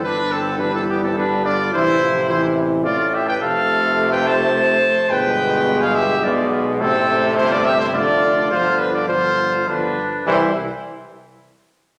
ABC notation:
X:1
M:3/4
L:1/16
Q:1/4=106
K:C
V:1 name="Trumpet"
B2 A2 B A G A B2 d2 | c4 c2 z2 d2 e g | f4- f g a6 | g4- g f e2 d2 z2 |
A4 c d e c d4 | c2 B d c4 B4 | c2 z8 z2 |]
V:2 name="Flugelhorn"
D2 C2 D C B, C D2 F2 | E4 E2 z2 F2 G B | A4- A B c6 | B4- B _A G2 F2 z2 |
C4 E F G E F4 | F2 D F F4 D4 | E2 z8 z2 |]
V:3 name="French horn" clef=bass
D,4 G,8 | E,2 F,2 E,4 A,4 | A,12 | _A,8 A,4 |
A,8 A,4 | F,4 F,4 F,2 z2 | G,2 z8 z2 |]
V:4 name="Trombone" clef=bass
D,4 E,4 D,4 | C,8 A,,4 | C,12 | B,,8 B,,4 |
C,8 D,4 | D,4 D,4 D,2 z2 | E,2 z8 z2 |]
V:5 name="Bass trombone" clef=bass
G,,,12 | A,,,12 | F,,,12 | G,,,8 B,,,4 |
A,,,4 G,,,4 F,,,4 | G,,,8 G,,,2 z2 | C,,2 z8 z2 |]